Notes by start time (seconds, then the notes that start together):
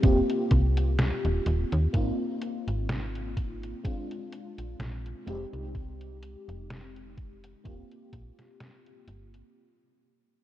0.02 D#1 A#3 C4 F4 G4, kick, closed hi-hat
0.30 closed hi-hat
0.51 C2, kick, closed hi-hat
0.77 closed hi-hat
0.99 snare, closed hi-hat
1.25 D#1, closed hi-hat
1.46 D#1, closed hi-hat
1.72 D#2, closed hi-hat
1.93 G#1 A#3 C4 D#4 F4, kick, closed hi-hat
2.42 closed hi-hat
2.67 G#1, closed hi-hat
2.89 snare, closed hi-hat
3.15 closed hi-hat
3.37 kick, closed hi-hat
3.63 closed hi-hat
3.83 G#3 C4 D4 F4, kick, closed hi-hat
4.11 closed hi-hat
4.32 closed hi-hat
4.58 A#1, closed hi-hat
4.80 A#1, snare, closed hi-hat
5.06 closed hi-hat
5.26 F1 G#3 C4 D#4 G4, closed hi-hat
5.53 C2, closed hi-hat
5.75 kick, closed hi-hat
6.01 closed hi-hat
6.23 closed hi-hat
6.48 F1, closed hi-hat
6.70 snare, closed hi-hat
6.96 closed hi-hat
7.18 kick, closed hi-hat
7.44 closed hi-hat
7.64 D#1 A#3 C4 F4 G4, kick, closed hi-hat
7.92 closed hi-hat
8.13 A#1, kick, closed hi-hat
8.39 snare, closed hi-hat
8.60 snare, closed hi-hat
8.86 closed hi-hat
9.08 G1, closed hi-hat
9.34 closed hi-hat